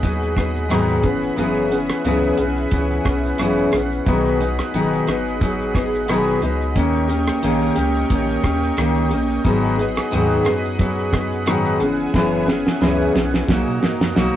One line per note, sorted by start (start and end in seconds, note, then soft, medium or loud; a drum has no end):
0.00 1.00 D#2 medium
0.00 0.36 F#3 medium
0.00 0.36 B3 medium
0.00 1.01 G#4 medium
0.00 1.01 D#5 medium
0.00 6.71 F#5 medium
0.00 4.02 B5 medium
0.00 kick medium
0.00 closed hi-hat medium
0.00 tambourine soft
0.00 shaker medium
0.04 0.35 D#4 medium
0.04 0.34 G#4 medium
0.22 shaker medium
0.35 0.69 F#3 soft
0.35 0.69 B3 medium
0.35 0.70 D#4 medium
0.35 0.70 G#4 medium
0.35 kick loud
0.35 cross-stick medium
0.35 closed hi-hat soft
0.35 tambourine soft
0.35 shaker soft
0.56 shaker medium
0.69 1.03 G#2 medium
0.69 1.04 D#3 medium
0.69 1.04 F#3 loud
0.69 1.03 B3 medium
0.69 1.03 D#4 medium
0.69 1.01 G#4 medium
0.69 cross-stick medium
0.69 closed hi-hat medium
0.69 tambourine medium
0.69 shaker medium
0.89 shaker medium
1.02 1.31 F#1 medium
1.02 1.36 E3 medium
1.02 1.37 B3 medium
1.02 1.37 C#4 medium
1.02 1.37 G#4 medium
1.02 4.03 G#4 medium
1.02 4.03 E5 medium
1.02 kick loud
1.02 closed hi-hat medium
1.02 tambourine soft
1.02 shaker soft
1.22 shaker medium
1.36 1.92 F#1 loud
1.36 1.71 F#2 medium
1.36 1.71 C#3 medium
1.36 1.71 E3 medium
1.36 1.71 B3 loud
1.36 1.70 C#4 medium
1.36 1.68 G#4 medium
1.36 closed hi-hat medium
1.36 tambourine medium
1.36 shaker medium
1.56 shaker soft
1.70 2.04 E3 soft
1.70 2.05 B3 soft
1.70 2.05 C#4 medium
1.70 2.04 G#4 medium
1.70 closed hi-hat medium
1.70 tambourine soft
1.70 shaker soft
1.89 cross-stick medium
1.89 tambourine soft
1.89 shaker medium
2.04 2.32 C#2 medium
2.04 2.38 F#2 medium
2.04 2.39 C#3 medium
2.04 2.39 E3 medium
2.04 2.39 B3 medium
2.04 2.37 C#4 medium
2.04 2.36 G#4 loud
2.04 closed hi-hat medium
2.04 tambourine medium
2.04 shaker medium
2.23 tambourine medium
2.23 shaker soft
2.37 2.66 B1 medium
2.37 2.70 E3 medium
2.37 2.71 B3 soft
2.37 2.72 C#4 medium
2.37 2.72 G#4 medium
2.37 closed hi-hat medium
2.37 shaker medium
2.57 tambourine soft
2.57 shaker soft
2.71 2.99 C#2 loud
2.71 3.05 E3 medium
2.71 3.06 B3 medium
2.71 3.05 C#4 medium
2.71 3.04 G#4 medium
2.71 kick loud
2.71 closed hi-hat medium
2.71 tambourine soft
2.71 shaker medium
2.90 shaker soft
3.05 3.33 B1 medium
3.05 3.39 E3 soft
3.05 3.39 B3 soft
3.05 3.40 C#4 soft
3.05 3.39 G#4 soft
3.05 kick medium
3.05 cross-stick medium
3.05 closed hi-hat soft
3.05 tambourine soft
3.05 shaker soft
3.24 tambourine soft
3.24 shaker medium
3.38 3.66 G#1 medium
3.38 3.73 F#2 medium
3.38 3.73 C#3 medium
3.38 3.73 E3 medium
3.38 3.73 B3 medium
3.38 3.72 C#4 loud
3.38 3.71 G#4 medium
3.38 cross-stick medium
3.38 closed hi-hat medium
3.38 tambourine medium
3.38 shaker medium
3.57 shaker medium
3.72 4.00 A#1 medium
3.72 4.07 E3 medium
3.72 4.06 B3 soft
3.72 4.07 C#4 medium
3.72 4.06 G#4 medium
3.72 cross-stick medium
3.72 closed hi-hat medium
3.72 tambourine soft
3.72 shaker medium
3.91 shaker medium
4.06 4.61 B1 loud
4.06 4.40 B2 medium
4.06 4.40 D#3 medium
4.06 4.41 F#3 medium
4.06 4.41 B3 loud
4.06 4.39 D#4 medium
4.06 6.73 G#4 medium
4.06 4.38 G#4 loud
4.06 11.76 D#5 medium
4.06 6.73 B5 medium
4.06 kick loud
4.06 closed hi-hat medium
4.06 tambourine soft
4.06 shaker medium
4.25 shaker soft
4.39 4.73 F#3 soft
4.39 4.74 B3 medium
4.39 4.74 D#4 medium
4.39 4.74 G#4 medium
4.39 closed hi-hat medium
4.39 tambourine soft
4.39 shaker soft
4.59 cross-stick medium
4.59 tambourine soft
4.59 shaker medium
4.74 5.01 F#1 medium
4.74 5.07 B2 medium
4.74 5.08 D#3 medium
4.74 5.08 F#3 medium
4.74 5.08 B3 medium
4.74 5.07 D#4 medium
4.74 5.06 G#4 medium
4.74 closed hi-hat medium
4.74 tambourine medium
4.74 shaker medium
4.93 tambourine medium
4.93 shaker soft
5.07 6.38 G#1 medium
5.07 5.39 F#3 medium
5.07 5.40 B3 medium
5.07 5.41 D#4 medium
5.07 5.41 G#4 medium
5.07 cross-stick medium
5.07 closed hi-hat medium
5.07 shaker medium
5.27 tambourine soft
5.27 shaker soft
5.40 5.74 F#3 medium
5.40 5.75 B3 medium
5.40 5.74 D#4 medium
5.40 5.72 G#4 medium
5.40 kick loud
5.40 closed hi-hat medium
5.40 tambourine soft
5.40 shaker medium
5.60 shaker soft
5.74 6.08 F#3 soft
5.74 6.08 B3 medium
5.74 6.09 D#4 soft
5.74 6.08 G#4 medium
5.74 kick medium
5.74 cross-stick medium
5.74 closed hi-hat soft
5.74 tambourine soft
5.74 shaker soft
5.94 tambourine soft
5.94 shaker medium
6.08 6.42 B2 medium
6.08 6.42 D#3 medium
6.08 6.42 F#3 medium
6.08 6.43 B3 loud
6.08 6.41 D#4 loud
6.08 6.40 G#4 loud
6.08 cross-stick loud
6.08 closed hi-hat medium
6.08 tambourine medium
6.08 shaker medium
6.27 shaker medium
6.41 6.77 C#2 medium
6.41 6.76 F#3 medium
6.41 6.77 B3 medium
6.41 6.76 D#4 medium
6.41 6.75 G#4 medium
6.41 closed hi-hat soft
6.41 tambourine soft
6.41 shaker soft
6.61 shaker medium
6.75 7.30 D#2 loud
6.75 7.09 D#3 medium
6.75 7.10 A#3 medium
6.75 7.09 C#4 medium
6.75 7.07 G4 medium
6.75 9.42 A#4 medium
6.75 9.42 G5 medium
6.75 9.42 C#6 medium
6.75 kick loud
6.75 closed hi-hat medium
6.75 tambourine medium
6.75 shaker medium
6.95 shaker soft
7.08 7.42 A#3 medium
7.08 7.43 C#4 medium
7.08 7.42 G4 medium
7.08 closed hi-hat medium
7.08 tambourine soft
7.08 shaker medium
7.27 cross-stick medium
7.27 tambourine soft
7.27 shaker medium
7.42 7.70 A#1 medium
7.42 7.76 D#3 medium
7.42 7.77 A#3 medium
7.42 7.76 C#4 loud
7.42 7.74 G4 loud
7.42 closed hi-hat medium
7.42 tambourine medium
7.42 shaker medium
7.61 tambourine medium
7.61 shaker soft
7.75 8.04 C#2 medium
7.75 8.09 A#3 soft
7.75 8.10 C#4 medium
7.75 8.10 G4 medium
7.75 closed hi-hat medium
7.75 shaker medium
7.95 tambourine soft
7.95 shaker soft
8.09 8.37 A#1 loud
8.09 8.43 D#3 medium
8.09 8.44 A#3 medium
8.09 8.43 C#4 medium
8.09 8.42 G4 medium
8.09 kick loud
8.09 closed hi-hat medium
8.09 tambourine soft
8.09 shaker medium
8.29 tambourine soft
8.29 shaker soft
8.43 8.71 D#2 medium
8.43 8.77 A#3 soft
8.43 8.77 C#4 soft
8.43 8.77 G4 medium
8.43 kick medium
8.43 cross-stick medium
8.43 closed hi-hat soft
8.43 tambourine soft
8.43 shaker soft
8.63 shaker medium
8.77 9.13 C#2 medium
8.77 9.11 D#3 medium
8.77 9.11 A#3 medium
8.77 9.11 C#4 medium
8.77 9.09 G4 loud
8.77 cross-stick loud
8.77 closed hi-hat medium
8.77 tambourine medium
8.77 shaker medium
8.96 shaker medium
9.10 9.38 A#1 medium
9.10 9.45 A#3 medium
9.10 9.45 C#4 medium
9.10 9.44 G4 medium
9.10 closed hi-hat medium
9.10 tambourine soft
9.10 shaker soft
9.30 shaker medium
9.44 9.99 G#1 medium
9.44 9.78 G#2 medium
9.44 9.78 D#3 medium
9.44 9.79 F#3 medium
9.44 9.79 B3 loud
9.44 9.78 D#4 loud
9.44 11.78 G#4 medium
9.44 9.76 G#4 loud
9.44 14.36 F#5 medium
9.44 11.78 B5 medium
9.44 kick loud
9.44 closed hi-hat medium
9.44 tambourine medium
9.44 shaker medium
9.63 shaker soft
9.77 10.11 F#3 soft
9.77 10.12 B3 soft
9.77 10.12 D#4 medium
9.77 10.12 G#4 medium
9.77 closed hi-hat soft
9.77 tambourine soft
9.77 shaker medium
9.96 cross-stick medium
9.96 tambourine soft
9.96 shaker medium
10.11 10.39 D#2 medium
10.11 10.45 G#2 medium
10.11 10.46 D#3 medium
10.11 10.46 F#3 loud
10.11 10.46 B3 loud
10.11 10.45 D#4 medium
10.11 10.43 G#4 medium
10.11 closed hi-hat medium
10.11 tambourine medium
10.11 shaker medium
10.30 tambourine medium
10.30 shaker soft
10.45 11.77 F#2 medium
10.45 10.77 F#3 medium
10.45 10.78 B3 medium
10.45 10.79 D#4 medium
10.45 10.79 G#4 medium
10.45 cross-stick medium
10.45 closed hi-hat medium
10.45 shaker medium
10.64 tambourine soft
10.64 shaker soft
10.78 11.12 F#3 medium
10.78 11.13 B3 medium
10.78 11.12 D#4 medium
10.78 11.10 G#4 medium
10.78 kick loud
10.78 closed hi-hat medium
10.78 tambourine soft
10.78 shaker medium
10.99 shaker soft
11.12 11.46 F#3 soft
11.12 11.46 B3 medium
11.12 11.47 D#4 soft
11.12 11.46 G#4 medium
11.12 kick medium
11.12 cross-stick loud
11.12 closed hi-hat soft
11.12 tambourine soft
11.12 shaker soft
11.32 shaker medium
11.46 11.80 G#2 medium
11.46 11.80 D#3 medium
11.46 11.81 F#3 medium
11.46 11.81 B3 loud
11.46 11.81 D#4 medium
11.46 11.78 G#4 loud
11.46 cross-stick loud
11.46 closed hi-hat medium
11.46 tambourine medium
11.46 shaker medium
11.65 shaker medium
11.80 12.07 F#1 medium
11.80 12.13 E3 medium
11.80 12.14 B3 medium
11.80 12.14 C#4 medium
11.80 12.14 G#4 medium
11.80 13.47 G#4 medium
11.80 13.47 E5 medium
11.80 14.36 G#5 medium
11.80 closed hi-hat soft
11.80 tambourine soft
11.80 shaker soft
11.99 shaker soft
12.13 12.68 F#1 loud
12.13 12.47 F#2 medium
12.13 12.48 C#3 medium
12.13 12.48 E3 medium
12.13 12.48 B3 loud
12.13 12.47 C#4 medium
12.13 12.46 G#4 loud
12.13 kick loud
12.13 snare medium
12.13 tambourine medium
12.47 12.80 E3 soft
12.47 12.81 B3 medium
12.47 12.81 C#4 medium
12.47 12.81 G#4 medium
12.47 snare medium
12.47 tambourine soft
12.67 snare medium
12.80 13.08 C#2 medium
12.80 13.14 F#2 medium
12.80 13.15 C#3 medium
12.80 13.15 E3 loud
12.80 13.15 B3 medium
12.80 13.14 C#4 medium
12.80 13.13 G#4 loud
12.80 snare medium
12.80 tambourine medium
13.00 tambourine medium
13.14 13.42 B1 medium
13.14 13.47 E3 medium
13.14 13.48 B3 medium
13.14 13.49 C#4 medium
13.14 13.48 G#4 medium
13.14 snare medium
13.34 snare medium
13.47 13.63 B1 loud
13.47 13.82 F#3 medium
13.47 13.82 A#3 medium
13.47 13.82 D#4 medium
13.47 13.80 F#4 medium
13.47 14.36 A#4 medium
13.47 14.36 D#5 medium
13.47 kick loud
13.47 snare loud
13.47 tambourine soft
13.67 13.79 B2 medium
13.67 tambourine soft
13.81 13.97 G#2 medium
13.81 14.15 A#3 soft
13.81 14.15 D#4 soft
13.81 14.15 F#4 medium
13.81 snare medium
13.81 tambourine soft
14.00 14.13 F#2 medium
14.00 snare medium
14.00 tambourine soft
14.15 14.30 B1 medium
14.15 14.36 B2 medium
14.15 14.36 F#3 medium
14.15 14.36 A#3 medium
14.15 14.36 D#4 medium
14.15 14.36 F#4 medium
14.15 snare medium
14.15 tambourine medium